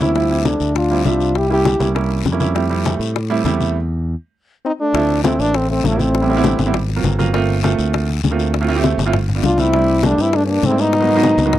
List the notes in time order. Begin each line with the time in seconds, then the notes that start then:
Already playing: D2
0.00 G3 A#3 C4 C#4 E4, high bongo, high conga, short guiro
0.15 F3 G3 C4 E4, high bongo, high conga, long guiro
0.30 F3 G3 C4 E4, high conga
0.45 A3 D4, high bongo, high conga, short guiro
0.60 D2, high bongo, high conga, short guiro
0.75 D4 F4, high bongo, high conga, long guiro
0.90 F3 G3 C4 E4, high bongo, high conga
1.05 C2 F3 G3 C4 D4 F4 E5, high bongo, low bongo, high conga, short guiro
1.20 high bongo, short guiro
1.35 E4 G4, high bongo, high conga, long guiro
1.50 G3 A#3 C#4 E4 G4, high conga
1.65 high bongo, high conga, short guiro
1.80 C2 G3 A#3 C#4 E4, high bongo, high conga, short guiro
1.95 G3 A#3 C#4 E4, high bongo, high conga, long guiro
2.11 high bongo, high conga
2.25 F2, high bongo, low bongo, high conga, short guiro
2.32 G3 A#3 C#4 E4
2.40 G3 A#3 C#4 E4, high bongo, high conga, short guiro
2.55 G3 A3 C4 E4, high bongo, high conga, long guiro
2.70 G3 A3 C4 E4, high conga
2.85 high bongo, high conga, short guiro
2.99 A2, high bongo, high conga, short guiro
3.16 high bongo, high conga, long guiro
3.30 G3 A3 C4 E4, high bongo, high conga
3.44 E2 G3 A3 C4 E4, high bongo, low bongo, high conga, short guiro
3.60 high bongo, high conga, short guiro
4.65 C4 D#4
4.80 A3 D4
4.94 D2 F3 A3 C4 E4, high bongo, high conga, long guiro
5.10 high conga
5.24 F3 A3 C4 E4, high bongo, high conga, short guiro
5.39 A1 A#3 D4, high bongo, high conga, short guiro
5.54 A3 C4, high bongo, high conga, long guiro
5.69 A3 C4, high bongo, high conga
5.84 A1 F3 A3, high bongo, low bongo, high conga, short guiro
5.92 F3 A3 C4 E4
5.99 A3 C4, high bongo, high conga, short guiro
6.14 high bongo, high conga, long guiro
6.21 G3 B3 C4 E4
6.29 G3 B3 C4 E4, high conga
6.36 G3 B3 C4 E4
6.44 high bongo, high conga, short guiro
6.59 G#1, high bongo, high conga, short guiro
6.66 G3 B3 C4 E4
6.74 high bongo, high conga, low conga, long guiro
6.89 high bongo, high conga
6.96 F#3 A#3 C4 F4
7.04 G1, high bongo, low bongo, high conga, short guiro
7.18 F#3 A#3 C4 F4, high bongo, high conga, short guiro
7.34 A3 A#3 C4 F4, high bongo, high conga, long guiro
7.49 high conga
7.63 A3 A#3 C4 F4, high bongo, high conga, short guiro
7.79 D2, high bongo, high conga, short guiro
7.93 high bongo, high conga, long guiro
8.09 high bongo, high conga
8.23 D2, high bongo, low bongo, high conga, short guiro
8.31 A3 A#3 C4 F4
8.39 high bongo, short guiro
8.54 high bongo, high conga, long guiro
8.61 A3 C4 E4 F4
8.68 A3 C4 E4 F4, high conga
8.75 A3 C4 E4 G4
8.84 high bongo, high conga, short guiro
8.98 G1, high bongo, high conga, short guiro
9.06 A3 C4 E4 F4
9.13 high bongo, high conga, low conga, long guiro
9.28 high bongo, high conga, low conga
9.35 A3 B3 D4 F4
9.43 C2 D4 F4, high bongo, low bongo, high conga, short guiro
9.58 A3 B3 C4 D4 E4 F4, high bongo, high conga, short guiro
9.73 G3 A3 D4 E4, high bongo, high conga, long guiro
9.88 high conga
10.03 G3 A3 D4 G4, high bongo, high conga, short guiro
10.18 G2 C4 E4, high bongo, high conga, short guiro
10.33 A3 D4, high bongo, high conga, long guiro
10.44 A3 C#4
10.48 A#3 D4, high bongo, high conga
10.63 G#2 A3 C4, high bongo, low bongo, high conga, short guiro
10.70 G3 A3 D4 E4
10.78 B3 D#4, high bongo, short guiro
10.93 high bongo, high conga, long guiro
11.00 F#3 A#3 B3 D#4
11.08 F#3 A#3 B3 D#4, high conga
11.15 F#3 A#3 B3 D#4
11.23 high bongo, high conga, short guiro
11.37 C#2, high bongo, high conga, short guiro
11.46 F#3 A#3 B3 D#4
11.53 high bongo, high conga, low conga, long guiro